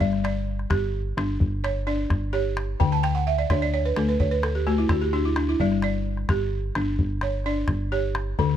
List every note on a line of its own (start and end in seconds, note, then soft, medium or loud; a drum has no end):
0.00 0.66 G1 loud
0.00 0.47 G3 medium
0.00 0.24 G4 medium
0.00 0.23 D5 medium
0.00 calabash thump medium
0.13 calabash click soft
0.24 0.94 D5 medium
0.24 calabash click medium
0.59 calabash click soft
0.70 1.13 G1 loud
0.70 1.17 G4 medium
0.70 calabash thump medium
0.70 calabash click medium
1.17 1.38 G1 loud
1.17 1.64 D4 medium
1.17 calabash click medium
1.40 2.06 G1 loud
1.40 calabash thump medium
1.64 2.32 C#5 medium
1.64 calabash click medium
1.87 2.33 D4 medium
1.87 2.57 D5 medium
1.87 calabash click soft
2.10 2.76 G1 medium
2.10 calabash thump medium
2.10 calabash click medium
2.33 2.80 G4 medium
2.33 3.03 C#5 medium
2.57 calabash click medium
2.80 3.46 D2 loud
2.80 3.26 D3 medium
2.80 3.02 G5 medium
2.80 calabash thump medium
2.92 3.14 A5 medium
2.92 calabash click soft
3.03 3.25 G5 medium
3.03 calabash click medium
3.15 3.36 F#5 medium
3.27 3.48 E5 medium
3.38 3.60 D5 medium
3.38 calabash click soft
3.50 3.93 D2 loud
3.50 3.97 D4 medium
3.50 3.72 C#5 medium
3.50 calabash thump medium
3.50 calabash click medium
3.62 3.83 D5 medium
3.74 3.95 C#5 medium
3.86 4.07 B4 medium
3.96 4.18 D2 loud
3.96 4.43 A3 medium
3.96 4.18 A4 medium
3.96 calabash click medium
4.09 4.30 B4 medium
4.20 4.86 D2 medium
4.20 4.41 C#5 medium
4.20 calabash thump medium
4.31 4.53 B4 medium
4.43 4.65 A4 medium
4.43 calabash click medium
4.55 4.76 G4 medium
4.67 5.13 A3 medium
4.67 4.88 F#4 medium
4.67 calabash click soft
4.78 5.00 E4 medium
4.89 5.56 D2 medium
4.89 5.11 F#4 medium
4.89 calabash thump medium
4.89 calabash click medium
5.02 5.23 G4 medium
5.13 5.36 D4 medium
5.13 5.35 F#4 medium
5.25 5.46 E4 medium
5.36 5.58 D4 medium
5.36 calabash click medium
5.49 5.70 E4 medium
5.60 6.25 G1 loud
5.60 6.06 G3 medium
5.60 5.83 D5 medium
5.60 calabash thump medium
5.72 calabash click soft
5.82 6.53 D5 medium
5.82 calabash click medium
6.17 calabash click soft
6.29 6.72 G1 loud
6.29 6.76 G4 medium
6.29 calabash thump medium
6.29 calabash click medium
6.75 6.97 G1 loud
6.75 7.22 D4 medium
6.75 calabash click medium
6.99 7.65 G1 medium
6.99 calabash thump medium
7.21 7.91 C#5 medium
7.21 calabash click medium
7.44 7.92 D4 medium
7.44 8.15 D5 medium
7.44 calabash click soft
7.68 8.35 G1 medium
7.68 calabash thump medium
7.68 calabash click medium
7.92 8.38 G4 medium
7.92 8.57 C#5 medium
8.15 calabash click medium
8.39 8.57 D2 loud
8.39 8.57 D3 medium
8.39 8.57 A4 medium
8.39 calabash thump medium
8.50 calabash click soft